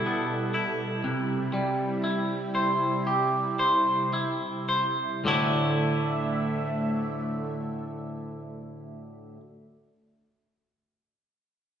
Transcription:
Already playing: analog synth pad B2 G3 E4 A4, clean electric guitar D4 E4
0.06 clean electric guitar B3
0.54 clean electric guitar E4
1.04 clean electric guitar C3, analog synth pad C3 E4
1.53 clean electric guitar G3
2.04 clean electric guitar E4
2.55 clean electric guitar C5
3.07 clean electric guitar G4
3.59 clean electric guitar C5
4.13 clean electric guitar E4
4.69 clean electric guitar C5
5.24 clean electric guitar D2 A2 D3 A3 E4, analog synth pad D3 A3 E5

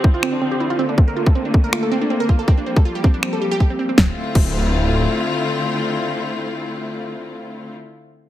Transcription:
Already playing: string section D3 F3 C4
0.04 synth arpeggio sound E4, kick
0.14 synth arpeggio sound F4
0.23 synth arpeggio sound C4, finger snap
0.33 synth arpeggio sound D4
0.42 synth arpeggio sound C4
0.51 synth arpeggio sound G4
0.60 synth arpeggio sound E4
0.70 synth arpeggio sound F4
0.79 string section A3 A#3, synth arpeggio sound C4
0.89 synth arpeggio sound D4
0.98 synth arpeggio sound C4, kick
1.08 synth arpeggio sound A#4
1.17 synth arpeggio sound F4
1.26 synth arpeggio sound A4, kick
1.35 synth arpeggio sound C4
1.45 synth arpeggio sound D4
1.54 synth arpeggio sound C4, kick
1.64 synth arpeggio sound A#4
1.73 synth arpeggio sound F4, finger snap
1.83 synth arpeggio sound A4
1.92 synth arpeggio sound C4
2.01 synth arpeggio sound D4
2.10 synth arpeggio sound C4
2.20 synth arpeggio sound A#4
2.29 synth arpeggio sound F4, kick
2.39 synth arpeggio sound A4
2.48 string section F3 G3, synth arpeggio sound C4, kick
2.58 synth arpeggio sound D4
2.66 synth arpeggio sound C4
2.76 synth arpeggio sound A4, kick
2.85 synth arpeggio sound F4
2.95 synth arpeggio sound G4
3.04 synth arpeggio sound C4, kick
3.14 synth arpeggio sound D4
3.23 synth arpeggio sound C4, finger snap
3.33 synth arpeggio sound A4
3.42 synth arpeggio sound G4
3.51 synth arpeggio sound G4
3.60 synth arpeggio sound G4, kick
3.70 synth arpeggio sound C4
3.79 synth arpeggio sound C4
3.89 synth arpeggio sound C4
3.98 detuned saw bass D1, string section D3 A3 C4 E4 F4, kick, snare
4.35 detuned saw bass D1, synth arpeggio sound C4, kick, crash

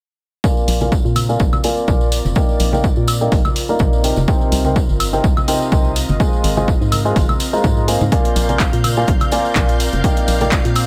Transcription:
0.44 grand piano A#3 F4 A#4 D5 G#5, analog synth pad C4, kick, tambourine
0.50 analog synth pad F4
0.57 tambourine
0.68 fm bass A#1, open hi-hat, tambourine
0.81 grand piano A#3 F4 A#4 D5 G#5, tambourine, high conga
0.86 analog synth pad A#4
0.92 kick, tambourine
1.05 fm bass A#2, tambourine
1.15 open hi-hat, tambourine, high conga, high woodblock
1.20 analog synth pad D5
1.29 grand piano A#3 F4 A#4 D5 G#5, tambourine
1.40 fm bass A#1, kick, tambourine
1.53 tambourine, high conga, high woodblock
1.64 grand piano A#3 F4 A#4 D5 G#5, open hi-hat, tambourine
1.77 tambourine
1.87 fm bass A#1, grand piano F4 A#4 D5 G#5, kick, tambourine, high conga
2.01 tambourine
2.12 open hi-hat, tambourine
2.25 fm bass F1, tambourine, high conga
2.35 grand piano A#3 D#4 A#4 D5 G5, kick, tambourine
2.49 tambourine
2.60 fm bass A#1, open hi-hat, tambourine
2.73 grand piano A#3 D#4 A#4 D5 G5, tambourine, high conga
2.84 kick, tambourine
2.96 fm bass A#2, tambourine
3.08 open hi-hat, tambourine, high woodblock
3.21 grand piano A#3 D#4 A#4 D5 G5, tambourine
3.32 fm bass A#1, kick, open hi-hat, tambourine
3.45 tambourine, high conga, high woodblock
3.56 open hi-hat, tambourine
3.68 grand piano A#3 D#4 A#4 D5 A#5, tambourine
3.79 fm bass A#1, kick, tambourine, high conga
3.93 tambourine
4.04 grand piano C3 D#4 A#4 D5 G5, open hi-hat, tambourine
4.16 fm bass F1, tambourine, high conga
4.28 grand piano C3 D#4 A#4 C5 G5, kick, tambourine
4.41 tambourine
4.52 fm bass C2, open hi-hat, tambourine
4.64 grand piano C3 D#4 A#4 C5 G5, tambourine, high conga
4.76 kick, tambourine
4.87 fm bass G1, analog synth pad D#5, tambourine
5.00 open hi-hat, tambourine, high woodblock
5.13 grand piano C3 D#4 A#4 C5 G5, tambourine
5.24 fm bass C2, kick, tambourine
5.37 tambourine, high conga, high woodblock
5.48 grand piano C3 D#4 A#4 C5 G5, open hi-hat, tambourine
5.62 tambourine
5.71 fm bass C2, grand piano C3 D#4 A#4 C5 G5, kick, tambourine, high conga
5.84 tambourine
5.96 open hi-hat, tambourine
6.09 fm bass G1, tambourine, high conga
6.20 grand piano G#3 F4 C5 D#5 G#5, kick, tambourine
6.33 tambourine
6.44 fm bass G#1, open hi-hat, tambourine
6.57 grand piano G#3 F4 C5 D#5 G#5, tambourine, high conga
6.68 kick, tambourine
6.81 fm bass G#2, tambourine
6.92 open hi-hat, tambourine, high conga, high woodblock
7.05 grand piano G#3 F4 C5 D#5 G#5, tambourine
7.16 fm bass G#1, kick, open hi-hat, tambourine
7.29 tambourine, high conga, high woodblock
7.40 open hi-hat, tambourine
7.53 grand piano G#3 F4 C5 D#5 A#5, tambourine
7.64 fm bass G#2, kick, tambourine, high conga
7.77 tambourine
7.88 grand piano A#3 F4 C5 D#5 G#5, open hi-hat, tambourine
8.01 fm bass G#2, tambourine, high conga
8.12 grand piano A#3 F4 A#4 D5 G#5, string machine F5 G6, kick, closed hi-hat, tambourine
8.25 closed hi-hat, tambourine
8.31 analog synth pad D5
8.36 fm bass A#1, open hi-hat, tambourine
8.49 grand piano A#3 F4 A#4 D5 G#5, closed hi-hat, tambourine, high conga
8.60 kick, clap, closed hi-hat, tambourine
8.73 fm bass A#2, closed hi-hat, tambourine
8.84 open hi-hat, tambourine, high conga, high woodblock
8.97 grand piano A#3 F4 A#4 D5 G#5, tambourine
9.07 fm bass A#1, kick, closed hi-hat, tambourine
9.20 closed hi-hat, tambourine, high conga, high woodblock
9.32 grand piano A#3 F4 A#4 D5 G#5, open hi-hat, tambourine
9.45 tambourine
9.55 fm bass A#1, grand piano F4 A#4, kick, clap, closed hi-hat, tambourine, high conga
9.68 closed hi-hat, tambourine
9.80 open hi-hat, tambourine
9.93 fm bass F1, closed hi-hat, tambourine, high conga
10.04 grand piano A#3 D#4 A#4 D5 G5, kick, closed hi-hat, tambourine
10.16 closed hi-hat, tambourine
10.28 fm bass A#1, open hi-hat, tambourine
10.41 grand piano A#3 D#4 A#4 D5 G5, closed hi-hat, tambourine, high conga
10.52 kick, clap, closed hi-hat, tambourine
10.65 fm bass A#2, closed hi-hat, tambourine
10.75 open hi-hat, tambourine, high woodblock

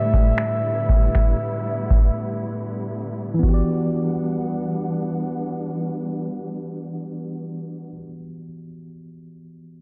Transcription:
Already playing: tine electric piano A2 A3 G4 B4 D5, string section D3 G3 A3 B3 E4, alto saxophone E5
0.14 kick
0.38 finger snap
0.89 kick
1.15 finger snap, kick
1.91 kick
3.34 tine electric piano E3
3.39 tine electric piano B3
3.43 string section E3 G3 B3 D4 F#5, tine electric piano F#4, kick, crash
3.49 tine electric piano G4
3.54 tine electric piano D5

